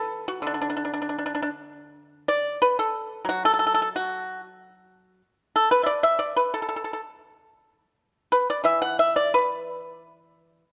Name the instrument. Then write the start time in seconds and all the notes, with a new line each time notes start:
pipa
Already playing: E3 A4
0.28 F#4
0.42 D3
0.47 D4
0.54 D4
0.62 D4
0.70 D4
0.77 D4
0.85 D4
0.94 D4
1.02 D4
1.09 D4
1.19 D4
1.26 D4
1.35 D4
1.42 D4
2.28 D5
2.62 B4
2.79 A4
3.25 F#3
3.29 F#4
3.45 A4
3.54 A4
3.59 A4
3.67 A4
3.74 A4
3.96 F#4
5.56 A4
5.71 B4
5.83 D5 E5
6.03 E5
6.19 D5
6.36 B4
6.54 A4
6.62 A4
6.69 A4
6.76 A4
6.84 A4
6.93 A4
8.32 B4
8.50 D5
8.64 E3 E5
8.82 F#5
8.99 E5
9.16 D5
9.34 B4